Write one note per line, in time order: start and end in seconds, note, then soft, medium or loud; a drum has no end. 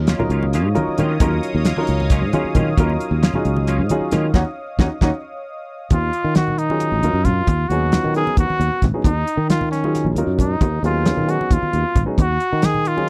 0.00 0.15 D#2 medium
0.00 5.88 C#5 medium
0.00 5.88 D#5 medium
0.00 5.88 F5 medium
0.00 5.88 D#6 medium
0.07 0.22 F#3 medium
0.07 0.22 A#3 medium
0.07 0.22 C#4 medium
0.07 0.22 F4 medium
0.07 snare loud
0.07 closed hi-hat medium
0.19 0.66 F#3 medium
0.19 0.66 C#4 medium
0.19 0.66 D#4 medium
0.19 0.66 F4 medium
0.19 0.66 A#4 medium
0.19 muted fretless electric bass stroke soft
0.19 high conga medium
0.19 low conga medium
0.30 0.65 C#2 medium
0.30 0.45 A#3 soft
0.30 0.45 C#4 soft
0.30 0.44 F4 soft
0.30 closed hi-hat medium
0.43 muted conga medium
0.53 0.67 F#3 medium
0.53 0.67 A#3 medium
0.53 0.67 C#4 medium
0.53 0.67 F4 medium
0.53 snare soft
0.53 closed hi-hat medium
0.53 low conga soft
0.65 0.74 G#2 medium
0.75 1.12 F#3 medium
0.75 1.12 C#4 medium
0.75 1.12 D#4 medium
0.75 1.13 F4 medium
0.75 1.13 A#4 medium
0.75 closed hi-hat medium
0.75 high conga medium
0.75 low conga soft
0.88 muted fretless electric bass stroke soft
0.98 1.17 D#3 medium
0.98 1.12 F#3 medium
0.98 1.12 A#3 medium
0.98 1.12 C#4 medium
0.98 1.13 F4 medium
0.98 closed hi-hat medium
0.98 low conga medium
1.20 1.39 D#2 medium
1.20 1.67 F#3 medium
1.20 1.34 F#3 medium
1.20 1.34 A#3 medium
1.20 1.34 C#4 medium
1.20 1.67 C#4 medium
1.20 1.68 D#4 medium
1.20 1.34 F4 medium
1.20 1.67 F4 medium
1.20 1.67 A#4 medium
1.20 kick loud
1.20 closed hi-hat medium
1.20 muted conga medium
1.33 high conga medium
1.43 closed hi-hat medium
1.43 low conga soft
1.54 1.73 D#2 medium
1.65 1.79 F#3 medium
1.65 1.79 A#3 medium
1.65 1.79 C#4 medium
1.65 1.79 F4 medium
1.65 snare loud
1.65 closed hi-hat medium
1.77 2.24 F#3 medium
1.77 2.24 C#4 medium
1.77 2.24 D#4 medium
1.77 2.24 F4 medium
1.77 2.24 A#4 medium
1.77 muted fretless electric bass stroke soft
1.77 high conga medium
1.87 2.23 C#2 medium
1.87 closed hi-hat medium
2.00 muted conga medium
2.10 2.24 F#3 medium
2.10 2.24 A#3 medium
2.10 2.24 C#4 loud
2.10 2.24 F4 medium
2.10 kick loud
2.10 snare soft
2.10 closed hi-hat medium
2.10 low conga soft
2.21 2.30 G#2 medium
2.33 2.70 F#3 medium
2.33 2.47 A#3 soft
2.33 2.47 C#4 soft
2.33 2.70 C#4 medium
2.33 2.70 D#4 medium
2.33 2.46 F4 soft
2.33 2.70 F4 medium
2.33 2.70 G#4 medium
2.33 closed hi-hat medium
2.33 high conga medium
2.33 low conga soft
2.45 muted fretless electric bass stroke soft
2.55 2.73 D#3 medium
2.55 2.69 F#3 medium
2.55 2.69 A#3 medium
2.55 2.69 C#4 medium
2.55 2.69 F4 medium
2.55 kick medium
2.55 closed hi-hat medium
2.55 low conga medium
2.77 2.96 D#2 loud
2.77 2.91 F#3 medium
2.77 3.25 F#3 medium
2.77 2.91 A#3 medium
2.77 2.91 C#4 medium
2.77 3.25 C#4 medium
2.77 3.25 D#4 medium
2.77 2.91 F4 medium
2.77 3.25 F4 medium
2.77 3.25 A#4 medium
2.77 kick loud
2.77 closed hi-hat medium
2.77 muted conga medium
2.90 high conga medium
3.00 closed hi-hat medium
3.00 low conga soft
3.11 3.29 D#2 medium
3.22 3.36 F#3 medium
3.22 3.36 A#3 medium
3.22 3.36 C#4 medium
3.22 3.36 F4 medium
3.22 snare loud
3.22 closed hi-hat medium
3.34 3.81 F#3 medium
3.34 3.81 C#4 medium
3.34 3.81 D#4 medium
3.34 3.80 F4 medium
3.34 3.81 G#4 medium
3.34 muted fretless electric bass stroke soft
3.34 high conga medium
3.34 low conga medium
3.45 3.80 C#2 medium
3.45 closed hi-hat medium
3.57 muted conga medium
3.67 3.81 F#3 medium
3.67 3.81 A#3 loud
3.67 3.81 C#4 medium
3.67 3.81 F4 medium
3.67 closed hi-hat medium
3.67 low conga soft
3.79 3.88 G#2 medium
3.89 4.27 F#3 medium
3.89 4.27 C#4 medium
3.89 4.28 D#4 medium
3.89 4.28 F4 medium
3.89 4.27 G#4 medium
3.89 closed hi-hat medium
3.89 high conga medium
3.89 low conga soft
4.01 muted fretless electric bass stroke soft
4.11 4.30 D#3 medium
4.11 4.26 F#3 medium
4.11 4.26 A#3 medium
4.11 4.26 C#4 medium
4.11 4.26 F4 medium
4.11 snare soft
4.11 closed hi-hat medium
4.11 low conga medium
4.34 4.42 D#2 medium
4.34 4.42 A#3 medium
4.34 4.42 C#4 medium
4.34 4.42 D#4 medium
4.34 4.42 F#4 medium
4.34 kick medium
4.34 snare medium
4.34 muted conga medium
4.79 4.87 D#2 loud
4.79 4.87 A#3 medium
4.79 4.87 C#4 medium
4.79 4.87 D#4 loud
4.79 4.87 D#4 medium
4.79 4.87 F#4 medium
4.79 kick loud
4.79 snare loud
4.79 muted conga medium
5.01 5.10 D#2 medium
5.01 5.09 A#3 medium
5.01 5.09 C#4 medium
5.01 5.09 D#4 medium
5.01 5.09 F#4 medium
5.01 kick medium
5.01 snare loud
5.01 muted conga medium
5.90 6.09 D#2 medium
5.90 6.34 F4 medium
5.90 kick loud
5.90 closed hi-hat medium
5.90 muted conga medium
5.90 high conga medium
6.04 low conga soft
6.13 closed hi-hat soft
6.24 6.93 D#3 medium
6.24 low conga soft
6.35 6.60 F#4 medium
6.35 snare loud
6.35 closed hi-hat medium
6.35 high conga medium
6.48 low conga medium
6.58 7.27 D#4 medium
6.58 closed hi-hat medium
6.70 6.98 F#3 medium
6.70 6.98 C#4 medium
6.70 6.98 D#4 medium
6.70 6.98 F4 medium
6.70 6.98 G#4 medium
6.70 muted conga medium
6.80 closed hi-hat medium
6.80 low conga soft
6.92 7.01 A#1 medium
6.92 high conga medium
7.03 7.12 D#2 medium
7.03 7.48 F#3 medium
7.03 7.49 C#4 medium
7.03 7.48 D#4 medium
7.03 7.49 F4 medium
7.03 7.49 A#4 medium
7.03 closed hi-hat soft
7.03 low conga soft
7.13 7.41 F#2 medium
7.13 low conga soft
7.25 7.70 F4 medium
7.25 kick medium
7.25 closed hi-hat soft
7.25 low conga medium
7.47 7.66 D#2 medium
7.47 kick medium
7.47 closed hi-hat medium
7.47 muted conga medium
7.47 high conga medium
7.60 low conga soft
7.69 7.98 D#2 medium
7.69 7.89 F#3 medium
7.69 7.90 B3 medium
7.69 7.89 C#4 medium
7.69 7.90 D#4 medium
7.69 8.15 F#4 medium
7.69 7.90 G#4 medium
7.69 closed hi-hat medium
7.82 low conga soft
7.92 8.12 F#3 medium
7.92 8.12 B3 medium
7.92 8.12 C#4 medium
7.92 8.12 D#4 soft
7.92 8.12 F4 medium
7.92 snare loud
7.92 closed hi-hat medium
7.92 high conga medium
8.04 8.23 D#3 medium
8.04 low conga medium
8.14 8.81 F#3 medium
8.14 8.81 B3 medium
8.14 8.80 C#4 medium
8.14 8.81 D#4 medium
8.14 8.37 G#4 medium
8.14 8.81 A#4 medium
8.14 closed hi-hat medium
8.27 muted conga medium
8.37 8.47 D#2 medium
8.37 8.85 F#4 medium
8.37 kick medium
8.37 closed hi-hat medium
8.50 muted fretless electric bass stroke soft
8.50 high conga medium
8.59 8.69 D#2 medium
8.59 closed hi-hat medium
8.59 low conga soft
8.72 low conga soft
8.82 8.91 G#1 medium
8.82 kick medium
8.82 snare soft
8.82 closed hi-hat medium
8.82 low conga medium
8.93 9.05 F#3 medium
8.93 9.05 B3 medium
8.93 9.05 C#4 medium
8.93 9.05 D#4 medium
8.93 9.05 G#4 medium
8.93 muted fretless electric bass stroke soft
9.04 9.23 D#2 medium
9.04 9.46 D#4 medium
9.04 kick loud
9.04 closed hi-hat medium
9.04 muted conga medium
9.04 high conga medium
9.16 low conga soft
9.27 closed hi-hat medium
9.37 10.06 D#3 medium
9.37 low conga soft
9.50 9.71 F4 medium
9.50 snare medium
9.50 closed hi-hat medium
9.50 high conga medium
9.61 low conga medium
9.71 10.09 C#4 medium
9.71 snare soft
9.71 closed hi-hat medium
9.84 10.12 F#3 medium
9.84 10.12 C#4 medium
9.84 10.12 D#4 medium
9.84 10.12 F4 medium
9.84 10.12 G#4 medium
9.84 muted conga medium
9.95 snare soft
9.95 closed hi-hat medium
9.95 low conga soft
10.05 10.14 A#1 medium
10.05 high conga medium
10.16 10.25 D#2 medium
10.16 10.62 F#3 medium
10.16 10.62 C#4 medium
10.16 10.62 D#4 medium
10.16 10.62 F4 medium
10.16 10.63 A#4 medium
10.16 closed hi-hat medium
10.16 low conga soft
10.27 10.55 F#2 medium
10.27 low conga soft
10.39 10.81 D#4 medium
10.39 kick medium
10.39 closed hi-hat soft
10.39 low conga medium
10.61 10.80 D#2 medium
10.61 kick loud
10.61 closed hi-hat medium
10.61 muted conga medium
10.61 high conga medium
10.73 low conga soft
10.83 11.11 D#2 medium
10.83 11.03 F#3 medium
10.83 11.03 B3 medium
10.83 11.03 C#4 medium
10.83 11.03 D#4 medium
10.83 11.32 F4 medium
10.83 11.03 G#4 medium
10.83 closed hi-hat medium
10.83 low conga soft
11.05 11.25 F#3 medium
11.05 11.25 B3 medium
11.05 11.25 C#4 medium
11.05 11.25 D#4 medium
11.05 11.25 G#4 medium
11.05 snare loud
11.05 closed hi-hat medium
11.05 high conga medium
11.17 11.36 D#3 medium
11.17 low conga medium
11.28 11.93 F#3 medium
11.28 11.93 B3 soft
11.28 11.93 C#4 medium
11.28 11.93 D#4 medium
11.28 11.55 F#4 medium
11.28 11.93 G#4 medium
11.28 closed hi-hat medium
11.41 muted conga medium
11.51 11.60 D#2 medium
11.51 12.03 F4 medium
11.51 kick medium
11.51 closed hi-hat medium
11.62 muted fretless electric bass stroke soft
11.62 high conga medium
11.73 11.83 D#2 medium
11.73 closed hi-hat medium
11.73 low conga soft
11.95 12.05 G#1 medium
11.95 kick medium
11.95 closed hi-hat medium
11.95 low conga medium
12.06 12.18 F#3 medium
12.06 12.18 B3 medium
12.06 12.18 C#4 medium
12.06 12.18 D#4 medium
12.06 12.18 G#4 medium
12.06 muted fretless electric bass stroke soft
12.18 12.37 D#2 medium
12.18 12.67 F#4 medium
12.18 kick loud
12.18 closed hi-hat medium
12.18 muted conga medium
12.18 high conga medium
12.30 low conga soft
12.40 closed hi-hat medium
12.53 13.09 D#3 medium
12.53 low conga soft
12.62 12.89 G#4 medium
12.62 snare loud
12.62 closed hi-hat medium
12.62 high conga medium
12.74 low conga medium
12.85 13.09 F4 medium
12.85 closed hi-hat medium
12.97 13.09 F#3 medium
12.97 13.09 C#4 medium
12.97 13.09 D#4 medium
12.97 13.09 F4 medium
12.97 13.09 G#4 medium
12.97 muted conga medium